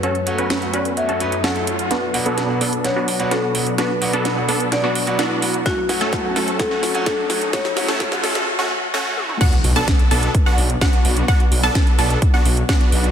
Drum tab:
CC |----------------|----------------|----------------|----------------|
HH |xxxxxxxxxxxxxxxx|x-oxx-oxx-oxx-ox|x-oxx-oxx-oxx-ox|x-oxx-oxx-oxx-ox|
SD |----o-------o---|o---o---o---o---|o---o---o---o---|o-o-o-o-o-o-o-o-|
T1 |----------------|----------------|----------------|----------------|
T2 |----------------|----------------|----------------|----------------|
BD |----------------|----------------|----------------|o---o---o---o---|

CC |----------------|x---------------|----------------|
HH |x-oxx-ox--------|xxoxxxoxx-oxxxox|xxoxxxoxx-oxxxox|
SD |oooooooo--------|----o-------o---|----o-------o---|
T1 |--------------o-|----------------|----------------|
T2 |---------------o|----------------|----------------|
BD |o---o-----------|o---o---o---o---|o---o---o---o---|